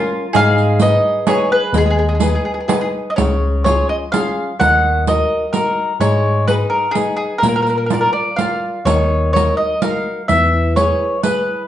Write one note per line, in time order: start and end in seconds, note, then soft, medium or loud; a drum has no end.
0.00 0.25 C#4 medium
0.00 0.25 F4 soft
0.00 0.33 F4 medium
0.00 0.25 A#4 medium
0.00 0.11 G#5 medium
0.33 0.95 G#2 loud
0.33 0.79 G#3 medium
0.33 1.26 G#4 loud
0.33 0.78 F5 loud
0.33 riq medium
0.58 riq soft
0.80 1.18 D#4 medium
0.80 1.18 G#4 soft
0.80 1.18 B4 medium
0.80 1.24 D#5 medium
0.80 riq medium
1.27 1.65 D#4 soft
1.27 2.90 G#4 medium
1.27 1.65 G#4 soft
1.27 1.65 B4 medium
1.27 1.50 C#5 medium
1.27 riq medium
1.52 1.73 B4 medium
1.73 2.35 D#2 medium
1.73 2.20 G#3 medium
1.73 riq medium
1.78 1.83 G#4 medium
1.86 1.89 G#4 medium
1.90 1.97 G#4 medium
1.99 2.04 G#4 medium
2.09 2.13 G#4 medium
2.15 2.19 G#4 soft
2.20 2.60 D#4 soft
2.20 2.26 G#4 medium
2.20 2.60 G#4 soft
2.20 2.60 B4 medium
2.20 riq medium
2.29 2.34 G#4 soft
2.35 2.41 G#4 medium
2.45 2.50 G#4 medium
2.54 2.58 G#4 soft
2.60 2.65 G#4 soft
2.68 3.07 D#4 soft
2.68 2.73 G#4 medium
2.68 3.08 G#4 soft
2.68 3.08 B4 medium
2.68 riq medium
2.74 2.80 G#4 soft
2.81 2.87 G#4 medium
3.10 3.16 D#5 medium
3.16 3.80 C#2 medium
3.16 3.65 C#3 medium
3.16 3.63 C#5 medium
3.16 riq medium
3.64 4.04 C#4 soft
3.64 4.04 F4 soft
3.64 4.04 G#4 soft
3.64 3.87 C#5 medium
3.64 riq medium
3.89 3.95 D#5 medium
4.12 4.50 C#4 soft
4.12 4.51 F4 soft
4.12 4.51 G#4 medium
4.12 4.56 F5 medium
4.12 riq medium
4.59 5.22 D#2 medium
4.59 5.05 D#3 medium
4.59 5.03 F#5 medium
4.59 riq medium
5.07 5.45 D#4 soft
5.07 5.45 F#4 soft
5.07 5.45 A#4 soft
5.07 5.51 D#5 medium
5.07 riq medium
5.53 5.92 D#4 soft
5.53 5.92 F#4 soft
5.53 5.97 A#4 medium
5.53 5.92 A#4 medium
5.53 riq medium
6.00 6.62 G#2 medium
6.00 6.46 G#3 medium
6.00 6.45 C#5 loud
6.00 riq medium
6.48 6.86 D#4 soft
6.48 6.86 G#4 soft
6.48 6.54 B4 medium
6.48 6.87 B4 medium
6.48 riq soft
6.70 6.95 A#4 medium
6.91 7.33 D#4 medium
6.91 7.15 G#4 medium
6.91 riq medium
6.96 7.33 G#4 soft
6.96 7.33 B4 soft
7.17 7.42 G#4 medium
7.38 7.47 A#4 medium
7.43 8.05 A#2 medium
7.43 7.89 A#3 medium
7.43 riq medium
7.48 7.55 A#4 medium
7.56 7.61 A#4 medium
7.62 7.68 A#4 medium
7.67 7.76 A#4 medium
7.67 riq soft
7.78 7.85 A#4 soft
7.86 7.93 A#4 soft
7.90 8.29 F4 soft
7.90 8.29 A#4 soft
7.90 8.00 A#4 medium
7.90 8.30 D5 medium
7.90 riq medium
8.01 8.10 A#4 medium
8.13 8.36 D5 medium
8.36 8.78 F4 soft
8.36 8.78 A#4 soft
8.36 8.87 F5 medium
8.36 riq medium
8.40 8.78 D5 soft
8.85 9.48 D#2 medium
8.85 9.34 D#3 medium
8.85 9.31 C#5 medium
8.85 riq medium
9.33 9.73 D#4 soft
9.33 9.74 F#4 soft
9.33 9.74 A#4 soft
9.33 9.57 C#5 medium
9.33 riq medium
9.57 9.80 D#5 medium
9.82 10.21 D#4 soft
9.82 10.21 F#4 soft
9.82 10.21 A#4 soft
9.82 10.28 F5 medium
9.82 riq medium
10.28 10.91 E2 medium
10.28 10.75 E3 medium
10.28 10.73 E5 medium
10.28 riq medium
10.76 11.15 E4 soft
10.76 11.15 G#4 soft
10.76 11.15 B4 medium
10.76 11.23 C#5 medium
10.76 riq medium
11.23 11.61 E4 soft
11.23 11.62 G#4 soft
11.23 11.67 B4 medium
11.23 11.62 B4 medium
11.23 riq medium